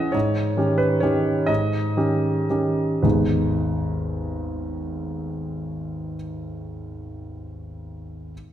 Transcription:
0.00 0.16 C#3 soft
0.00 0.16 E3 soft
0.00 0.17 C#4 soft
0.00 0.17 G#4 soft
0.00 0.13 D#5 medium
0.00 0.17 E5 medium
0.00 0.17 F#5 medium
0.12 0.57 G#2 soft
0.12 0.79 C#5 medium
0.57 0.99 D#3 soft
0.57 0.99 C#4 soft
0.57 0.99 G4 soft
0.78 1.02 B4 medium
1.00 1.44 D#3 soft
1.00 1.44 C#4 soft
1.00 1.45 G4 soft
1.00 1.47 C#5 medium
1.46 1.95 G#2 soft
1.46 3.03 D#5 medium
1.97 2.46 D#3 soft
1.97 2.46 C#4 soft
1.97 2.46 G4 soft
2.50 3.00 D#3 soft
2.50 3.00 C#4 soft
2.50 3.00 G4 soft
3.02 6.15 G#1 soft
3.02 6.14 D#2 soft
3.02 6.15 G#3 soft
3.02 6.15 B3 soft
3.02 6.15 D#4 soft
3.02 6.15 G#4 soft
3.02 6.14 B4 soft

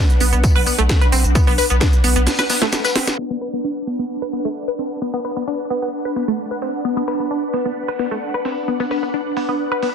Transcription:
0.00 3.17 D4 medium
0.00 3.19 B4 medium
0.00 3.19 F#5 medium
0.10 closed hi-hat medium
0.20 0.32 B1 loud
0.20 0.31 B3 medium
0.20 open hi-hat loud
0.20 tambourine medium
0.33 0.43 B1 medium
0.33 0.39 B3 medium
0.33 closed hi-hat medium
0.44 kick loud
0.44 closed hi-hat medium
0.44 tambourine medium
0.56 0.66 B1 medium
0.56 0.62 B4 loud
0.56 open hi-hat medium
0.66 0.73 B3 medium
0.66 open hi-hat loud
0.66 tambourine medium
0.78 0.89 B1 medium
0.78 0.82 A3 loud
0.78 closed hi-hat soft
0.89 kick loud
0.89 snare loud
0.89 closed hi-hat medium
0.89 tambourine medium
1.01 1.08 B4 medium
1.01 closed hi-hat medium
1.12 1.24 B1 loud
1.12 1.23 C4 medium
1.12 open hi-hat loud
1.12 tambourine medium
1.24 1.35 B1 medium
1.24 closed hi-hat medium
1.35 1.46 B3 medium
1.35 kick loud
1.35 closed hi-hat medium
1.35 tambourine medium
1.47 1.58 B1 medium
1.47 1.54 B3 loud
1.47 open hi-hat medium
1.58 1.65 B4 medium
1.58 open hi-hat loud
1.58 tambourine medium
1.70 1.81 B1 medium
1.70 1.76 B3 medium
1.70 closed hi-hat medium
1.80 1.88 D4 medium
1.80 kick loud
1.80 snare loud
1.80 closed hi-hat medium
1.80 tambourine medium
1.93 closed hi-hat medium
2.04 2.15 B1 loud
2.04 2.14 B3 medium
2.04 open hi-hat loud
2.04 tambourine medium
2.16 2.27 B1 medium
2.16 2.22 B3 medium
2.16 closed hi-hat medium
2.26 snare medium
2.26 closed hi-hat medium
2.26 open hi-hat medium
2.39 2.45 B4 loud
2.39 snare medium
2.39 closed hi-hat medium
2.49 2.57 B3 medium
2.49 snare loud
2.49 open hi-hat loud
2.49 tambourine medium
2.62 2.65 A3 loud
2.62 snare medium
2.62 closed hi-hat medium
2.72 snare medium
2.72 closed hi-hat medium
2.72 tambourine medium
2.84 2.91 B4 medium
2.84 snare loud
2.84 closed hi-hat medium
2.84 tambourine medium
2.96 3.06 C4 medium
2.96 snare loud
2.96 open hi-hat loud
3.07 snare medium
3.07 closed hi-hat medium
3.07 tambourine medium
3.18 3.29 B3 medium
3.18 9.95 D4 medium
3.18 crash medium
3.26 9.95 B4 medium
3.30 3.37 B3 loud
3.41 3.48 B4 medium
3.41 open hi-hat loud
3.53 3.60 B3 medium
3.64 3.71 D4 medium
3.87 3.97 B3 medium
3.87 9.95 F#5 medium
3.87 open hi-hat loud
3.99 4.05 B3 medium
4.22 4.28 B4 loud
4.22 open hi-hat medium
4.33 4.40 B3 medium
4.33 open hi-hat loud
4.45 4.49 A3 loud
4.68 4.74 B4 medium
4.79 4.89 C4 medium
4.79 open hi-hat loud
5.02 5.12 B3 medium
5.14 5.20 B3 loud
5.14 open hi-hat medium
5.25 5.31 B4 medium
5.25 open hi-hat loud
5.37 5.43 B3 medium
5.47 5.54 D4 medium
5.70 5.81 B3 medium
5.70 open hi-hat loud
5.82 5.89 B3 medium
6.05 6.11 B4 medium
6.16 6.23 B3 medium
6.16 open hi-hat loud
6.28 6.32 A3 loud
6.51 6.57 B4 medium
6.62 6.72 C4 medium
6.62 open hi-hat loud
6.85 6.95 B3 medium
6.97 7.03 B3 loud
7.08 7.15 B4 medium
7.08 open hi-hat loud
7.20 7.26 B3 medium
7.31 7.38 D4 medium
7.54 7.64 B3 medium
7.54 open hi-hat loud
7.66 7.72 B3 medium
7.88 7.95 B4 loud
7.88 open hi-hat medium
7.99 8.06 B3 medium
7.99 open hi-hat loud
8.11 8.15 A3 loud
8.34 8.40 B4 medium
8.45 8.55 C4 medium
8.45 open hi-hat loud
8.68 8.78 B3 medium
8.80 8.86 B3 loud
8.80 open hi-hat medium
8.91 8.98 B4 medium
8.91 open hi-hat loud
9.03 9.09 B3 medium
9.14 9.21 D4 medium
9.37 9.47 B3 medium
9.37 open hi-hat loud
9.49 9.55 B3 medium
9.72 9.78 B4 loud
9.83 9.89 B3 medium
9.83 open hi-hat loud

